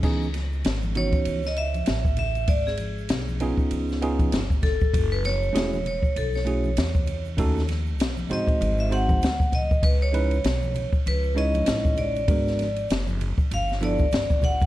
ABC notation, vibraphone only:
X:1
M:4/4
L:1/16
Q:"Swing 16ths" 1/4=98
K:C#m
V:1 name="Vibraphone"
z6 c3 d e4 e2 | =d G6 z6 z A2- | A B c4 c2 A c6 z | z6 d3 e f4 d2 |
B c6 z B2 d4 =d2- | =d4 z4 =f2 d4 ^f2 |]